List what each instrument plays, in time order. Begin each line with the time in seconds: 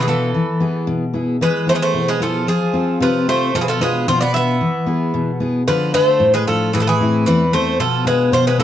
Already playing: steel-string acoustic guitar B2
0.01 bouzouki E3 G#4
0.07 bouzouki E3 A4, steel-string acoustic guitar B3 D4 F4
0.34 steel-string acoustic guitar E3
0.60 steel-string acoustic guitar B3 E4 G#4
0.87 steel-string acoustic guitar B2
1.14 steel-string acoustic guitar B3 E4 G#4
1.41 steel-string acoustic guitar E3, bouzouki G#3 B4
1.67 bouzouki A3 C5, steel-string acoustic guitar B3 E4 G#4
1.75 bouzouki G#3 B4
1.82 bouzouki A3 C5
1.94 steel-string acoustic guitar B2
2.08 bouzouki G#3 B4
2.20 bouzouki F3 A4, steel-string acoustic guitar B3 E4 G#4
2.47 steel-string acoustic guitar F3, bouzouki F3 G#4
2.73 steel-string acoustic guitar C4 F4 A4
3.00 steel-string acoustic guitar C3, bouzouki F3 B4
3.27 bouzouki A3 C5, steel-string acoustic guitar C4 F4 A4
3.55 steel-string acoustic guitar B2, bouzouki F3 A4
3.61 bouzouki E3 G#4
3.68 bouzouki F3 A4
3.80 bouzouki G#3 B4, steel-string acoustic guitar B3 D4 F4
4.08 steel-string acoustic guitar B2, bouzouki F3 C5
4.21 bouzouki B3 D5
4.34 steel-string acoustic guitar B3 D4 F4, bouzouki B3 E5
4.61 steel-string acoustic guitar E3
4.86 steel-string acoustic guitar B3 E4 G#4
5.14 steel-string acoustic guitar B2
5.40 steel-string acoustic guitar B3 E4 G#4
5.68 steel-string acoustic guitar D3, bouzouki F3 B4
5.93 bouzouki A3 C5, steel-string acoustic guitar D4 F4 A4
6.20 steel-string acoustic guitar A2
6.34 bouzouki G#3 B4
6.47 bouzouki F3 A4, steel-string acoustic guitar D4 F4 A4
6.73 steel-string acoustic guitar A2, bouzouki E3 G#4
6.80 bouzouki F3 A4
6.87 bouzouki E3 G#4
7.00 steel-string acoustic guitar A3 C4 E4
7.26 steel-string acoustic guitar E2, bouzouki E3 B4
7.52 steel-string acoustic guitar A3 C4 E4, bouzouki A3 C5
7.79 steel-string acoustic guitar B2, bouzouki F3 A4
8.05 bouzouki G#3 B4, steel-string acoustic guitar B3 D4 F4
8.32 steel-string acoustic guitar B2, bouzouki F3 C5
8.47 bouzouki G#3 B4
8.58 bouzouki E3 A4, steel-string acoustic guitar B3 D4 F4